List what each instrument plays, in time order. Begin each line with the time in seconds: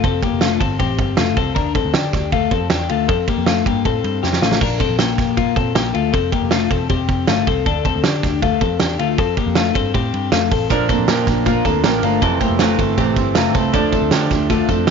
0.04 picked electric bass F1, clean electric guitar C4 A4, kick, ride
0.23 clean electric guitar A#3 G4, kick, ride
0.32 picked electric bass F1
0.41 clean electric guitar A3 F4, snare, ride
0.60 picked electric bass G1, clean electric guitar C4 A4, kick, ride
0.79 picked electric bass A1, clean electric guitar C4 G4, kick, ride
0.98 picked electric bass G1, kick, ride
1.17 picked electric bass F1, clean electric guitar A3 F4, snare, ride
1.36 picked electric bass C2, clean electric guitar C4 A4, kick, ride
1.55 picked electric bass D2, clean electric guitar D4 A#4, kick, ride
1.75 clean electric guitar C4 A4, kick, ride
1.85 picked electric bass D2
1.94 picked electric bass D3, clean electric guitar D4 G4, snare, ride
2.13 picked electric bass D2, kick, snare, ride
2.32 clean electric guitar A3 F4, kick, ride
2.51 picked electric bass F2, clean electric guitar C4 A4, kick, ride
2.70 picked electric bass E2, clean electric guitar D4 G4, snare, ride
2.89 picked electric bass D2, clean electric guitar A3 F4, ride
3.08 picked electric bass F2, clean electric guitar C4 A4, kick, ride
3.28 clean electric guitar A#3 G4, kick, ride
3.38 picked electric bass F2
3.46 clean electric guitar A3 F4, snare, ride
3.66 picked electric bass G2, clean electric guitar A#3 G4, kick, ride
3.85 picked electric bass A2, clean electric guitar C4 A4, kick, ride
4.04 picked electric bass G2, ride
4.23 picked electric bass F2, clean electric guitar C4 G4, snare
4.33 snare
4.42 picked electric bass A1, clean electric guitar A3 F4, snare
4.52 snare
4.61 picked electric bass A#1, clean electric guitar D4 A#4, kick, crash
4.80 clean electric guitar C4 A4, kick, ride
4.89 picked electric bass A#1
4.99 clean electric guitar A#3 G4, snare, ride
5.18 kick, snare, ride
5.37 clean electric guitar A#3 F4, kick, ride
5.56 picked electric bass A#2, clean electric guitar C4 A4, kick, ride
5.75 picked electric bass A#1, clean electric guitar A#3 G4, snare, ride
5.94 picked electric bass D2, clean electric guitar A3 F4, ride
6.13 picked electric bass F1, clean electric guitar C4 A4, kick, ride
6.32 clean electric guitar A#3 G4, kick, ride
6.42 picked electric bass F1
6.51 clean electric guitar A3 F4, snare, ride
6.70 picked electric bass E1, clean electric guitar C4 A4, kick, ride
6.89 picked electric bass E1, clean electric guitar C4 G4, kick, ride
7.08 picked electric bass F1, kick, ride
7.27 picked electric bass G1, clean electric guitar A3 F4, snare, ride
7.47 picked electric bass C2, clean electric guitar C4 A4, kick, ride
7.66 picked electric bass D2, clean electric guitar D4 A4, kick, ride
7.85 clean electric guitar C4 A4, kick, ride
7.95 picked electric bass D2
8.04 picked electric bass D3, clean electric guitar D4 G4, snare, ride
8.23 picked electric bass D2, kick, snare, ride
8.42 clean electric guitar A3 F4, kick, ride
8.61 picked electric bass F2, clean electric guitar C4 A4, kick, ride
8.80 picked electric bass E2, clean electric guitar D4 G4, snare, ride
8.99 picked electric bass D2, clean electric guitar A3 F4, ride
9.18 picked electric bass F2, clean electric guitar C4 A4, kick, ride
9.37 clean electric guitar A#3 G4, kick, ride
9.47 picked electric bass F2
9.55 clean electric guitar A3 F4, snare, ride
9.75 picked electric bass G2, clean electric guitar C4 A4, kick, ride
9.94 picked electric bass A2, clean electric guitar C4 G4, kick, ride
10.14 picked electric bass G2, ride
10.32 picked electric bass F2, clean electric guitar A3 F4, snare, ride
10.51 picked electric bass A1, clean electric guitar C4 A4, kick, open hi-hat, ride
10.70 picked electric bass A#1, steel-string acoustic guitar A#2 F3 A#3 D4, clean electric guitar D4 A#4, kick, hi-hat pedal, ride
10.89 steel-string acoustic guitar F3 A#3 D4, clean electric guitar C4 A4, kick, ride, tambourine
10.99 picked electric bass A#1
11.08 steel-string acoustic guitar A#2 F3 A#3 D4, picked electric bass A#2, clean electric guitar A#3 G4, snare, ride, tambourine
11.27 picked electric bass A#1, steel-string acoustic guitar F3 A#3 D4, kick, snare, ride
11.45 steel-string acoustic guitar A#2 F3 A#3 D4, clean electric guitar A#3 F4, kick, ride, tambourine
11.65 picked electric bass D2, steel-string acoustic guitar F3 A#3 D4, clean electric guitar C4 A4, kick, ride, tambourine
11.84 picked electric bass A1, steel-string acoustic guitar A#2 F3 A#3 D4, clean electric guitar A#3 G4, snare, ride, tambourine
12.02 picked electric bass G1, steel-string acoustic guitar F3 A#3 D4, clean electric guitar A3 F4, ride, tambourine
12.22 picked electric bass F1, steel-string acoustic guitar F2 C3 E3 A3 C4, clean electric guitar C4 A4, kick, ride, tambourine
12.40 steel-string acoustic guitar E3 A3 C4, clean electric guitar A#3 G4, kick, ride, tambourine
12.50 picked electric bass F1
12.59 steel-string acoustic guitar F2 C3 E3 A3 C4, clean electric guitar A3 F4, snare, ride, tambourine
12.78 picked electric bass G1, steel-string acoustic guitar E3 A3 C4, clean electric guitar C4 A4, kick, ride, tambourine
12.98 picked electric bass A1, steel-string acoustic guitar C3 E3 A3 C4, clean electric guitar C4 G4, kick, ride, tambourine
13.16 picked electric bass G1, steel-string acoustic guitar E3 A3 C4, kick, ride, tambourine
13.35 picked electric bass F1, steel-string acoustic guitar F2 C3 E3 A3 C4, clean electric guitar A3 F4, snare, ride, tambourine
13.54 picked electric bass C2, steel-string acoustic guitar E3 A3 C4, clean electric guitar C4 A4, kick, ride, tambourine
13.73 picked electric bass D2, steel-string acoustic guitar D3 F3 A3 D4, clean electric guitar D4 A4, kick, ride
13.92 steel-string acoustic guitar F3 A3 D4, clean electric guitar C4 A4, kick, ride, tambourine
14.02 picked electric bass D2
14.11 picked electric bass D3, steel-string acoustic guitar D3 F3 A3 D4, clean electric guitar D4 G4, snare, ride, tambourine
14.30 picked electric bass D2, steel-string acoustic guitar F3 A3 D4, kick, snare, ride, tambourine
14.50 steel-string acoustic guitar D3 F3 A3 D4, clean electric guitar A3 F4, kick, ride, tambourine
14.69 picked electric bass F2, steel-string acoustic guitar F3 A3 D4, clean electric guitar C4 A4, kick, ride, tambourine
14.87 clean electric guitar G4, snare, ride